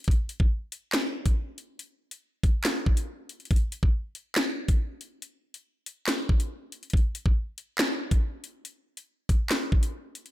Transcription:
0.04 kick loud
0.04 closed hi-hat medium
0.11 closed hi-hat medium
0.29 closed hi-hat medium
0.40 kick loud
0.72 closed hi-hat medium
0.93 snare loud
0.93 clap loud
0.93 closed hi-hat medium
1.26 kick medium
1.26 closed hi-hat medium
1.58 closed hi-hat medium
1.79 closed hi-hat medium
2.11 closed hi-hat medium
2.43 kick medium
2.43 closed hi-hat medium
2.64 snare loud
2.64 clap loud
2.64 closed hi-hat medium
2.86 kick loud
2.97 closed hi-hat loud
3.29 closed hi-hat medium
3.40 closed hi-hat soft
3.45 closed hi-hat medium
3.51 kick loud
3.51 closed hi-hat medium
3.56 closed hi-hat medium
3.72 closed hi-hat medium
3.83 kick loud
4.15 closed hi-hat medium
4.36 snare loud
4.36 clap loud
4.36 closed hi-hat medium
4.68 kick medium
4.68 closed hi-hat medium
5.01 closed hi-hat medium
5.22 closed hi-hat medium
5.54 closed hi-hat medium
5.86 closed hi-hat medium
6.07 snare loud
6.07 clap loud
6.07 closed hi-hat medium
6.29 kick loud
6.40 closed hi-hat medium
6.72 closed hi-hat medium
6.83 closed hi-hat medium
6.90 kick loud
6.90 closed hi-hat medium
6.97 closed hi-hat medium
7.15 closed hi-hat medium
7.26 kick loud
7.58 closed hi-hat medium
7.79 snare loud
7.79 clap loud
7.79 closed hi-hat medium
8.11 kick medium
8.11 closed hi-hat medium
8.44 closed hi-hat medium
8.65 closed hi-hat medium
8.97 closed hi-hat medium
9.29 kick medium
9.29 closed hi-hat medium
9.50 snare loud
9.50 clap loud
9.50 closed hi-hat medium
9.72 kick loud
9.83 closed hi-hat loud
10.15 closed hi-hat medium
10.26 closed hi-hat soft

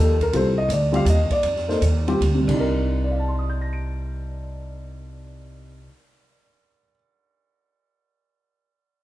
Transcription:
0.00 0.31 D#2 medium
0.00 0.16 F3 medium
0.00 0.16 A#3 medium
0.00 0.16 D#4 medium
0.00 0.16 G4 medium
0.00 0.21 A4 medium
0.20 0.34 A#4 medium
0.20 kick soft
0.20 ride soft
0.33 0.68 C2 medium
0.33 0.54 G3 medium
0.33 0.54 C4 medium
0.33 0.54 F4 medium
0.33 0.55 A4 medium
0.33 0.58 C5 medium
0.33 ride medium
0.58 0.69 D#5 medium
0.68 1.04 D2 medium
0.68 0.94 D5 medium
0.68 hi-hat pedal soft
0.68 ride medium
0.92 1.04 G3 medium
0.92 1.04 C4 medium
0.92 1.04 F4 medium
0.92 1.05 G4 medium
0.92 1.07 F5 medium
0.92 ride soft
1.05 1.28 D#2 medium
1.05 hi-hat pedal medium
1.05 ride medium
1.10 1.31 D#5 medium
1.30 2.18 D5 medium
1.30 muted upright bass stroke soft
1.30 kick medium
1.30 ride soft
1.43 1.80 F2 medium
1.43 ride medium
1.56 snare soft
1.68 1.80 A#3 medium
1.68 1.80 D#4 medium
1.68 1.81 A4 medium
1.68 1.81 C5 medium
1.68 snare soft
1.81 2.20 D#2 medium
1.81 hi-hat pedal soft
1.81 ride medium
2.08 2.20 G3 medium
2.08 2.20 C4 medium
2.08 2.20 F4 medium
2.08 2.20 G4 medium
2.08 ride soft
2.21 2.47 D2 medium
2.21 ride medium
2.34 5.77 C3 medium
2.41 5.83 G3 medium
2.48 5.86 C2 medium
2.48 5.91 D4 medium
2.48 kick medium
2.48 crash medium
2.53 5.96 D#4 medium
2.60 6.03 A#4 medium
3.04 6.43 D5 soft
3.11 6.50 F5 soft
3.19 6.58 A5 soft
3.28 6.67 C6 soft
3.39 6.77 D#6 soft
3.50 6.84 G6 soft
3.61 6.90 A#6 soft
3.73 6.96 D7 soft

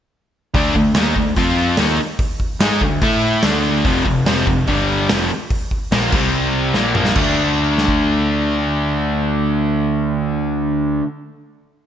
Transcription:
0.54 0.74 D2 medium
0.54 0.74 D3 loud
0.54 0.74 A3 loud
0.54 0.75 D4 loud
0.54 kick loud
0.54 open hi-hat medium
0.75 0.94 D2 medium
0.75 0.92 D3 medium
0.75 0.92 A3 medium
0.75 kick medium
0.95 1.15 D#2 medium
0.95 1.16 D#3 loud
0.95 1.16 A#3 loud
0.95 1.16 D#4 medium
0.95 snare loud
0.95 open hi-hat medium
1.05 snare soft
1.16 1.36 D2 medium
1.16 1.33 D3 medium
1.16 1.33 A3 medium
1.16 kick medium
1.36 1.75 F2 medium
1.36 1.78 F3 medium
1.36 1.78 C4 medium
1.36 1.78 F4 loud
1.36 kick medium
1.36 open hi-hat medium
1.77 1.98 D#2 medium
1.77 1.98 D#3 medium
1.77 1.99 A#3 loud
1.77 1.99 D#4 loud
1.77 snare loud
1.77 open hi-hat medium
2.19 kick loud
2.19 open hi-hat medium
2.40 kick medium
2.60 2.80 G#2 medium
2.60 2.81 G#3 medium
2.60 2.81 D#4 loud
2.60 2.82 G#4 loud
2.60 snare loud
2.60 open hi-hat medium
2.81 3.01 D2 medium
2.81 2.99 D3 medium
2.81 2.99 A3 medium
2.81 kick medium
3.01 3.41 A2 medium
3.01 3.43 A3 loud
3.01 3.43 E4 loud
3.01 3.44 A4 medium
3.01 kick medium
3.01 open hi-hat medium
3.43 3.82 D2 loud
3.43 3.85 D3 medium
3.43 3.85 A3 loud
3.43 3.85 D4 loud
3.43 snare loud
3.43 open hi-hat medium
3.85 4.04 F1 loud
3.85 4.05 F2 medium
3.85 4.05 C3 loud
3.85 4.06 F3 loud
3.85 kick loud
3.85 open hi-hat medium
4.06 4.25 F1 medium
4.06 4.23 F2 medium
4.06 4.23 C3 medium
4.06 kick medium
4.26 4.46 F1 medium
4.26 4.47 F2 medium
4.26 4.47 C3 loud
4.26 4.48 F3 loud
4.26 snare loud
4.26 open hi-hat medium
4.37 snare soft
4.47 4.66 F1 medium
4.47 4.64 F2 medium
4.47 4.65 C3 medium
4.47 kick medium
4.67 5.07 G1 medium
4.67 5.09 G2 medium
4.67 5.09 D3 loud
4.67 5.10 G3 loud
4.67 kick medium
4.67 open hi-hat medium
5.09 5.29 F1 loud
5.09 5.30 F2 loud
5.09 5.30 C3 loud
5.09 5.30 F3 loud
5.09 snare loud
5.09 open hi-hat medium
5.50 kick loud
5.50 open hi-hat medium
5.71 kick medium
5.92 6.11 A#1 medium
5.92 6.12 A#2 medium
5.92 6.13 F3 medium
5.92 6.13 A#3 medium
5.92 snare loud
5.92 open hi-hat medium
6.12 6.71 C2 medium
6.12 6.75 C3 loud
6.12 6.75 G3 loud
6.12 6.76 C4 loud
6.12 kick loud
6.12 crash medium
6.74 6.94 A#1 loud
6.74 6.95 A#2 medium
6.74 6.95 F3 loud
6.74 6.96 A#3 loud
6.74 snare medium
6.95 7.15 A#1 loud
6.95 7.15 A#2 medium
6.95 7.16 F3 loud
6.95 7.16 A#3 loud
6.95 mid tom medium
7.05 snare medium
7.15 11.00 D2 loud
7.15 11.04 D3 medium
7.15 11.07 A3 medium
7.15 kick loud
7.15 crash medium
7.20 11.09 D4 loud
7.78 snare medium
7.88 kick medium

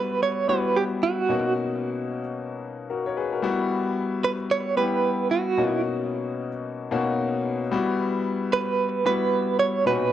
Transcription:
0.00 0.48 G3 medium
0.00 0.49 B3 medium
0.00 0.49 E4 medium
0.00 0.50 F#4 medium
0.00 0.21 B4 medium
0.23 0.49 C#5 loud
0.48 1.18 G3 medium
0.48 1.18 B3 medium
0.48 1.18 E4 medium
0.48 1.18 F#4 medium
0.48 0.77 B4 loud
0.77 0.84 G4 medium
1.03 1.53 F#4 medium
1.29 2.19 B2 medium
1.29 2.20 A#3 medium
1.29 2.20 C#4 medium
1.29 2.20 D#4 medium
1.29 2.20 F#4 medium
2.90 3.06 F#4 medium
2.90 3.05 A#4 medium
3.06 3.17 A#4 medium
3.06 3.16 C#5 medium
3.17 3.32 G#4 medium
3.17 3.32 B4 medium
3.32 3.42 F#4 medium
3.32 3.58 A#4 medium
3.42 4.33 G3 medium
3.42 4.34 B3 medium
3.42 4.34 E4 medium
3.42 4.34 F#4 medium
4.24 4.32 B4 loud
4.51 4.77 C#5 loud
4.77 5.46 G3 medium
4.77 5.47 B3 medium
4.77 5.47 E4 medium
4.77 5.47 G4 medium
4.77 5.27 B4 loud
5.31 5.81 F#4 medium
5.57 6.48 B2 medium
5.57 6.48 A#3 medium
5.57 6.48 C#4 medium
5.57 6.48 D#4 medium
5.57 6.49 F#4 medium
6.91 7.61 B2 medium
6.91 7.61 A#3 medium
6.91 7.61 C#4 medium
6.91 7.61 D#4 medium
6.91 7.61 F#4 medium
7.71 8.62 G3 medium
7.71 8.62 B3 medium
7.71 8.62 E4 medium
7.71 8.63 F#4 loud
8.53 9.05 B4 loud
9.05 9.75 G3 medium
9.05 9.75 B3 medium
9.05 9.75 E4 medium
9.05 9.75 F#4 medium
9.05 9.59 B4 loud
9.60 9.87 C#5 loud
9.86 10.12 A#2 medium
9.86 10.12 B2 medium
9.86 10.12 C#4 medium
9.86 10.12 D#4 medium
9.86 10.12 F#4 medium
9.86 10.12 B4 medium

